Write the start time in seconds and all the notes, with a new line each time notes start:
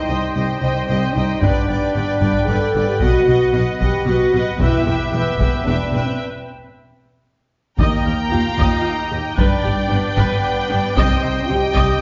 Already playing: G3 D#4 G4 C5 G5
0.07 C2 C5 D#5 G5
0.35 C2 C5 D#5 G5
0.60 C2 C4 C5 D#5 G5
0.86 C2 C4 C5 D#5 G5
1.13 C2 D#4 C5 D#5 G5
1.41 G1 G2 B3 D4 B4 D5 G5, taiko
1.68 G1 G2 B4 D5 G5
1.95 G1 G2 B4 D5 G5
2.21 G1 G2 B4 D5 G5, taiko
2.47 G1 G2 A4 B4 D5 G5
2.74 G1 G2 B4 D5 G5
2.87 G4
3.01 B1 B2 F#4 B4 D#5 F#5, taiko
3.26 B1 B2 B4 D#5
3.30 F#5
3.53 B1 B2 B4 D#5 F#5
3.80 B1 B2 G4 B4 D#5 F#5, taiko
4.06 B1 B2 F#4 B4 D#5 F#5
4.33 B1 B2 B4 D#5 F#5
4.59 E1 E2 E4 G4 B4 E5 G5, taiko
4.86 E1 E2 B3 B4 E5 G5
5.12 E1 E2 B4 E5 G5
5.39 E1 E2 B4 E5 G5, taiko
5.65 E1 E2 D4 B4 E5 G5
5.92 E1 E2 B4 E5 G5
6.05 C4
7.78 D#2 A#3 D#4 G4 A#4 D#5 G5 A#5, taiko
8.05 D#2 A#4
8.31 D#2 F4 G4 F5
8.57 D#2 D#5, taiko
8.83 D#4
8.87 D#5
9.11 D#2 G4
9.37 G1 G2 G3 D4 B4 D5 G5, taiko
9.64 G1 G2 G4
9.89 G1 G2 B3 D4 B4
10.16 G1 G2 B4, taiko
10.70 G1 G2 D4
10.96 C2 C3 C4 D#4 C5 D#5, taiko
11.23 C2 C3 C5
11.49 C2 C3 G4 G5
11.75 C2 C3 D#5, taiko